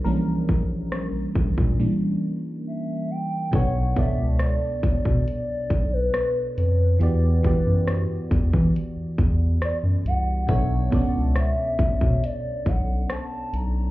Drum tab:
HH |----------------|x-x-x-x-x-x-x-x-|x-x-x-x-x-x-x-x-|x-x-x-x-x-x-x-x-|
SD |----r-----------|----r-------r---|----r-------r---|----r-------r---|
BD |--o---oo--------|o-o---oo--o-----|--o---oo--o-----|o-o---oo--o-----|